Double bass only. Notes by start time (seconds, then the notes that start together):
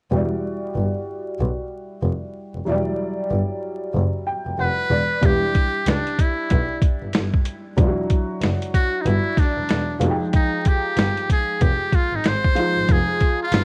0.12 E1
0.76 G1
1.40 B1
2.03 F1
2.55 F1
2.67 E1
3.31 G1
3.95 F#1
4.47 F1
4.59 F1
4.91 E1
5.23 E1
5.87 C#2
6.51 B1
7.03 G1
7.14 G1
7.78 E1
8.42 F#1
9.06 G1
9.58 E1
9.70 E1
10.01 F1
10.98 G1
11.62 F1
12.13 G#1
12.25 G#1
12.77 G#1
12.89 F1
13.52 G1